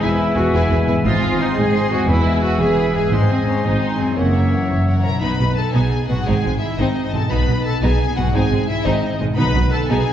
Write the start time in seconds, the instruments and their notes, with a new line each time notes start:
Already playing: harp E2 G#3 G#4, french horn section G#3, flute section G#5
0.00 double bass section E1, cello section E2, french horn section B3, viola section E4, violin section G#4 B4 G#5, harp B4, clarinet B4
0.04 oboe E5
0.36 double bass section E1, cello section E2, viola section F#4, violin section G#4 B4 G#5
0.53 double bass section E1, cello section E2, viola section E4, violin section G#4 B4 G#5
0.71 double bass section E1, cello section E2, violin section G#4 B4 G#5
0.88 double bass section E1, cello section E2, harp G#2, violin section G#4 B4 G#5
0.93 harp G#3
0.97 harp G#4
1.02 double bass section G#1, harp C5, violin section C6
1.06 cello section G#2, french horn section G#3 C4, violin section D#4 C5, viola section F4, clarinet C5, oboe D#5, flute section G#5
1.21 violin section G#4 D#5 G#5
1.39 violin section D#4 C5 C6, viola section D#4
1.56 double bass section G#1, cello section G#2, violin section G#4 D#5 G#5, viola section G#4
1.73 violin section D#4 C5 C6
1.90 harp E2, viola section F#4, violin section G#4 D#5 G#5
1.96 harp G#3
2.01 harp G#4
2.05 double bass section E1, french horn section B3, violin section E4 B4, viola section E4, harp B4, oboe E5
2.10 cello section E2, clarinet B4, violin section B5
2.26 violin section G#4 E5 G#5
2.43 violin section E4 B4 B5, viola section F#4
2.60 double bass section E1, cello section E2, violin section G#4 E5 G#5, viola section G#4
2.77 violin section E4 B4 B5
2.94 harp G#2, violin section G#4 E5 G#5, viola section G#4
3.00 harp G#3
3.04 harp G#4
3.11 double bass section G#1, cello section G#2, french horn section G#3 C4, viola section G#3, violin section D#4 C5 C6, clarinet C5, oboe D#5, flute section G#5
3.29 viola section C4, violin section G#4 D#5 G#5
3.46 viola section C#4, violin section D#4 C5 C6
3.63 double bass section G#1, cello section G#2, viola section D#4, violin section G#4 D#5 G#5
3.80 violin section D#4 C5 C6
3.98 harp F#2, viola section C4, violin section G#4 D#5 G#5
4.04 harp C#4
4.09 harp E4
4.14 double bass section F#1, cello section F#2, viola section A#3, violin section A#4 C#5 F#5, harp C#5, flute section F#5
4.18 french horn section E3 C#4, clarinet C#5, oboe E5
4.33 violin section A#4 C#5 E5
4.51 violin section A#4 C#5 F#5
4.69 double bass section F#1, cello section F#2, violin section A#4 C#5 E5
4.86 violin section A#4 C#5 F#5
5.03 harp B2, violin section A#4 C#5 E5 A#5, viola section A#4
5.10 harp B3
5.14 harp D#4
5.18 double bass section B1, violin section B3 D#4 B5, viola section B4, harp D#5
5.23 cello section B2
5.38 double bass section B1, cello section B2, violin section B3
5.56 viola section A4, violin section A5
5.73 double bass section B1, cello section B2, violin section B3 D#4 G#5, viola section G#4
6.08 double bass section B1, harp G#2, cello section B2, violin section B3 F#5, viola section F#4
6.14 harp C4
6.19 harp D#4
6.23 cello section G#2, violin section C4 D#4 G#5, viola section G#4, harp D#5
6.27 double bass section G#1
6.44 double bass section G#1, cello section G#2, violin section G#3 C4
6.59 viola section E4, violin section E5
6.79 double bass section G#1, cello section G#2, violin section C4 D#4 D#5, viola section D#4
7.13 double bass section G#1, cello section G#2, harp B2, violin section G#3 A5, viola section A4
7.19 harp B3
7.23 harp D#4
7.27 double bass section B1, cello section B2, violin section B3 D#4 B5, harp D#5
7.32 viola section B4
7.48 double bass section B1, cello section B2, violin section B3
7.65 viola section A4, violin section A5
7.82 double bass section B1, cello section B2, violin section B3 D#4 G#5, viola section G#4
8.15 double bass section B1, harp G#2, cello section B2, violin section B3 F#5, viola section F#4
8.22 harp C4
8.27 harp D#4
8.32 double bass section G#1, cello section G#2, violin section C4 D#4 G#5, viola section G#4, harp D#5
8.51 double bass section G#1, cello section G#2, violin section G#3 C4
8.68 viola section E4, violin section E5
8.84 double bass section G#1, cello section G#2, violin section C4 D#4 D#5, viola section D#4
9.20 double bass section G#1, cello section G#2, harp B2, violin section G#3
9.25 harp B3
9.29 harp D#4
9.34 cello section B2, violin section B3 D#4 B5, harp D#5
9.38 double bass section B1, timpani B2, viola section B4
9.55 double bass section B1, cello section B2, violin section B3
9.72 viola section A4, violin section A5
9.88 double bass section B1, cello section B2, violin section B3 D#4 G#5, viola section G#4